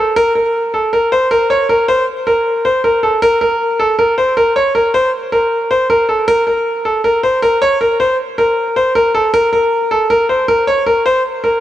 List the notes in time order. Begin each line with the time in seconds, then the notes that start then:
Already playing: A4
0.16 A#4
0.35 A#4
0.74 A4
0.93 A#4
1.12 C5
1.31 A#4
1.50 C#5
1.69 A#4
1.88 C5
2.27 A#4
2.65 C5
2.84 A#4
3.03 A4
3.22 A#4
3.41 A#4
3.80 A4
3.99 A#4
4.18 C5
4.37 A#4
4.56 C#5
4.75 A#4
4.94 C5
5.32 A#4
5.71 C5
5.90 A#4
6.09 A4
6.28 A#4
6.47 A#4
6.85 A4
7.04 A#4
7.23 C5
7.42 A#4
7.62 C#5
7.81 A#4
8.00 C5
8.38 A#4
8.76 C5
8.95 A#4
9.15 A4
9.34 A#4
9.53 A#4
9.91 A4
10.10 A#4
10.29 C5
10.48 A#4
10.67 C#5
10.86 A#4
11.06 C5
11.44 A#4